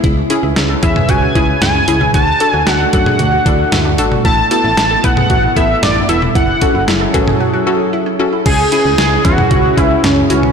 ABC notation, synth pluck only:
X:1
M:4/4
L:1/8
Q:1/4=114
K:C#phr
V:1 name="Synth pluck"
z [CEG] z [CEG] z [CEG] z [CEG] | z [DFA] z [DFA] z [DFA] z [DFA] | z [B,EA] z [B,EB] z [B,EA] z [B,EA] | z [CFA] z [CFA] z [CFA] z [CFA] |
z [CEG] z [CEG] z [CEG] z [CEF] |]